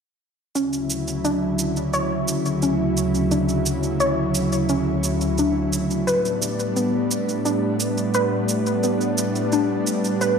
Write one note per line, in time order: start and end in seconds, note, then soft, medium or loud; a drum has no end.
0.55 6.04 D2 medium
0.55 6.04 C#3 medium
0.55 6.04 F#3 medium
0.55 0.88 C#4 medium
0.55 6.04 E4 medium
0.55 cabasa soft
0.73 cabasa soft
0.90 cabasa medium
1.08 cabasa soft
1.25 1.44 D4 medium
1.25 cabasa soft
1.59 cabasa medium
1.76 cabasa soft
1.93 2.25 C#5 medium
1.93 cabasa soft
2.28 cabasa medium
2.46 cabasa soft
2.62 2.95 C#4 medium
2.62 cabasa soft
2.97 cabasa medium
3.15 cabasa soft
3.31 3.50 D4 medium
3.31 cabasa soft
3.49 cabasa soft
3.66 cabasa medium
3.83 cabasa soft
4.00 4.32 C#5 loud
4.00 cabasa soft
4.35 cabasa medium
4.52 cabasa soft
4.69 5.02 C#4 medium
4.69 cabasa soft
5.04 cabasa medium
5.21 cabasa soft
5.38 5.58 D4 medium
5.38 cabasa soft
5.73 cabasa medium
5.91 cabasa soft
6.07 10.39 A2 medium
6.07 10.39 G3 medium
6.07 10.39 B3 medium
6.07 10.39 D4 medium
6.07 6.38 B4 medium
6.07 cabasa soft
6.25 cabasa soft
6.42 cabasa medium
6.60 cabasa soft
6.76 7.09 B3 medium
6.76 cabasa soft
7.11 cabasa medium
7.29 cabasa soft
7.45 7.64 D4 medium
7.45 cabasa soft
7.80 cabasa medium
7.98 cabasa soft
8.14 8.46 B4 loud
8.14 cabasa soft
8.49 cabasa medium
8.66 cabasa soft
8.83 9.16 B3 medium
8.83 cabasa soft
9.01 cabasa soft
9.18 cabasa medium
9.36 cabasa soft
9.52 9.71 D4 medium
9.52 cabasa soft
9.87 cabasa medium
10.04 cabasa soft
10.21 10.39 B4 loud
10.21 cabasa soft